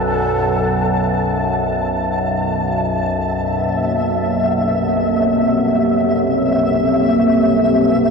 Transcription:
0, 0, Header, 1, 5, 480
1, 0, Start_track
1, 0, Tempo, 500000
1, 7781, End_track
2, 0, Start_track
2, 0, Title_t, "Synth texture"
2, 0, Program_c, 0, 99
2, 0, Note_on_c, 0, 81, 78
2, 2933, Note_on_c, 0, 76, 83
2, 2953, Note_off_c, 0, 81, 0
2, 7781, Note_off_c, 0, 76, 0
2, 7781, End_track
3, 0, Start_track
3, 0, Title_t, "Shakuhachi"
3, 0, Program_c, 1, 77
3, 0, Note_on_c, 1, 69, 91
3, 1371, Note_off_c, 1, 69, 0
3, 7781, End_track
4, 0, Start_track
4, 0, Title_t, "Ambient pad"
4, 0, Program_c, 2, 92
4, 2910, Note_on_c, 2, 58, 94
4, 3502, Note_on_c, 2, 67, 64
4, 3643, Note_on_c, 2, 69, 70
4, 4063, Note_on_c, 2, 60, 81
4, 7781, Note_off_c, 2, 58, 0
4, 7781, Note_off_c, 2, 60, 0
4, 7781, Note_off_c, 2, 67, 0
4, 7781, Note_off_c, 2, 69, 0
4, 7781, End_track
5, 0, Start_track
5, 0, Title_t, "Synth drone"
5, 0, Program_c, 3, 95
5, 0, Note_on_c, 3, 35, 63
5, 0, Note_on_c, 3, 42, 69
5, 7781, Note_off_c, 3, 35, 0
5, 7781, Note_off_c, 3, 42, 0
5, 7781, End_track
0, 0, End_of_file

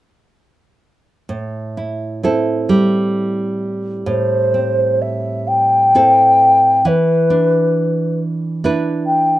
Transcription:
0, 0, Header, 1, 3, 480
1, 0, Start_track
1, 0, Key_signature, 0, "minor"
1, 0, Tempo, 958466
1, 644, Time_signature, 6, 3, 24, 8
1, 1117, Tempo, 928793
1, 3037, Tempo, 890208
1, 4897, End_track
2, 0, Start_track
2, 0, Title_t, "Flute"
2, 0, Program_c, 0, 73
2, 2071, Note_on_c, 0, 72, 76
2, 2557, Note_on_c, 0, 76, 63
2, 2564, Note_off_c, 0, 72, 0
2, 2794, Note_on_c, 0, 79, 84
2, 2802, Note_off_c, 0, 76, 0
2, 3536, Note_on_c, 0, 71, 75
2, 3544, Note_off_c, 0, 79, 0
2, 4253, Note_off_c, 0, 71, 0
2, 4717, Note_on_c, 0, 79, 75
2, 4897, Note_off_c, 0, 79, 0
2, 4897, End_track
3, 0, Start_track
3, 0, Title_t, "Nylon-string guitar"
3, 0, Program_c, 1, 24
3, 646, Note_on_c, 1, 45, 47
3, 888, Note_on_c, 1, 64, 35
3, 1119, Note_on_c, 1, 60, 44
3, 1120, Note_off_c, 1, 64, 0
3, 1122, Note_on_c, 1, 64, 41
3, 1124, Note_on_c, 1, 69, 45
3, 1356, Note_on_c, 1, 55, 53
3, 2058, Note_off_c, 1, 45, 0
3, 2064, Note_on_c, 1, 45, 49
3, 2309, Note_off_c, 1, 60, 0
3, 2311, Note_on_c, 1, 60, 38
3, 2931, Note_off_c, 1, 64, 0
3, 2933, Note_off_c, 1, 69, 0
3, 3033, Note_off_c, 1, 60, 0
3, 3038, Note_on_c, 1, 60, 41
3, 3039, Note_on_c, 1, 64, 42
3, 3043, Note_on_c, 1, 69, 48
3, 3059, Note_off_c, 1, 55, 0
3, 3524, Note_on_c, 1, 52, 54
3, 3525, Note_off_c, 1, 45, 0
3, 3577, Note_off_c, 1, 60, 0
3, 3579, Note_off_c, 1, 69, 0
3, 3768, Note_on_c, 1, 62, 42
3, 3785, Note_off_c, 1, 64, 0
3, 4488, Note_off_c, 1, 62, 0
3, 4490, Note_on_c, 1, 62, 48
3, 4493, Note_on_c, 1, 64, 49
3, 4498, Note_on_c, 1, 71, 57
3, 4897, Note_off_c, 1, 52, 0
3, 4897, Note_off_c, 1, 62, 0
3, 4897, Note_off_c, 1, 64, 0
3, 4897, Note_off_c, 1, 71, 0
3, 4897, End_track
0, 0, End_of_file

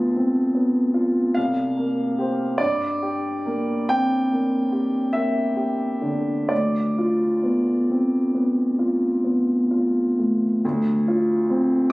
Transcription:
0, 0, Header, 1, 2, 480
1, 0, Start_track
1, 0, Key_signature, -1, "minor"
1, 0, Tempo, 800000
1, 1305, Tempo, 832178
1, 1540, Time_signature, 9, 3, 24, 8
1, 1785, Tempo, 898204
1, 2265, Tempo, 836820
1, 3225, Tempo, 920245
1, 5625, Tempo, 860832
1, 6595, End_track
2, 0, Start_track
2, 0, Title_t, "Grand piano"
2, 0, Program_c, 0, 0
2, 0, Control_c, 0, 64, 127
2, 0, Note_on_c, 0, 38, 44
2, 0, Note_on_c, 0, 59, 40
2, 0, Note_on_c, 0, 65, 38
2, 0, Note_on_c, 0, 81, 74
2, 98, Note_on_c, 0, 60, 33
2, 241, Note_off_c, 0, 59, 0
2, 328, Note_on_c, 0, 59, 38
2, 335, Note_off_c, 0, 60, 0
2, 564, Note_off_c, 0, 65, 0
2, 564, Note_on_c, 0, 65, 40
2, 715, Note_off_c, 0, 59, 0
2, 794, Note_off_c, 0, 38, 0
2, 807, Note_on_c, 0, 77, 75
2, 811, Note_off_c, 0, 81, 0
2, 812, Note_off_c, 0, 65, 0
2, 817, Note_on_c, 0, 36, 45
2, 826, Control_c, 0, 64, 0
2, 909, Control_c, 0, 64, 127
2, 1060, Note_on_c, 0, 58, 39
2, 1311, Note_on_c, 0, 67, 38
2, 1319, Note_on_c, 0, 72, 40
2, 1446, Note_off_c, 0, 58, 0
2, 1519, Note_off_c, 0, 36, 0
2, 1520, Note_off_c, 0, 67, 0
2, 1524, Note_off_c, 0, 72, 0
2, 1535, Note_off_c, 0, 77, 0
2, 1538, Note_on_c, 0, 74, 77
2, 1544, Note_on_c, 0, 43, 51
2, 1551, Control_c, 0, 64, 0
2, 1656, Control_c, 0, 64, 127
2, 1794, Note_on_c, 0, 67, 40
2, 2027, Note_on_c, 0, 58, 42
2, 2176, Note_off_c, 0, 67, 0
2, 2257, Note_on_c, 0, 79, 80
2, 2259, Note_on_c, 0, 60, 32
2, 2264, Note_off_c, 0, 74, 0
2, 2409, Note_off_c, 0, 58, 0
2, 2500, Note_off_c, 0, 60, 0
2, 2502, Note_on_c, 0, 58, 38
2, 2734, Note_on_c, 0, 67, 40
2, 2878, Note_off_c, 0, 58, 0
2, 2966, Note_on_c, 0, 76, 70
2, 2971, Note_off_c, 0, 79, 0
2, 2976, Note_on_c, 0, 58, 35
2, 3123, Note_off_c, 0, 67, 0
2, 3217, Note_on_c, 0, 67, 38
2, 3367, Note_off_c, 0, 58, 0
2, 3453, Note_on_c, 0, 50, 34
2, 3604, Note_off_c, 0, 67, 0
2, 3688, Note_off_c, 0, 43, 0
2, 3698, Note_on_c, 0, 74, 59
2, 3702, Note_off_c, 0, 50, 0
2, 3703, Note_off_c, 0, 76, 0
2, 3705, Note_on_c, 0, 38, 42
2, 3718, Control_c, 0, 64, 0
2, 3824, Control_c, 0, 64, 127
2, 3957, Note_on_c, 0, 65, 34
2, 4192, Note_on_c, 0, 59, 32
2, 4342, Note_off_c, 0, 65, 0
2, 4436, Note_on_c, 0, 60, 28
2, 4575, Note_off_c, 0, 59, 0
2, 4669, Note_on_c, 0, 59, 33
2, 4673, Note_off_c, 0, 60, 0
2, 4900, Note_on_c, 0, 65, 32
2, 5052, Note_off_c, 0, 59, 0
2, 5136, Note_on_c, 0, 59, 30
2, 5285, Note_off_c, 0, 65, 0
2, 5378, Note_on_c, 0, 65, 33
2, 5523, Note_off_c, 0, 59, 0
2, 5622, Note_off_c, 0, 74, 0
2, 5630, Note_on_c, 0, 45, 30
2, 5776, Note_off_c, 0, 65, 0
2, 5854, Note_off_c, 0, 38, 0
2, 5879, Note_off_c, 0, 45, 0
2, 5885, Note_on_c, 0, 38, 57
2, 5887, Control_c, 0, 64, 0
2, 5969, Control_c, 0, 64, 127
2, 6127, Note_on_c, 0, 65, 44
2, 6361, Note_on_c, 0, 60, 45
2, 6500, Note_off_c, 0, 65, 0
2, 6595, Note_off_c, 0, 38, 0
2, 6595, Note_off_c, 0, 60, 0
2, 6595, End_track
0, 0, End_of_file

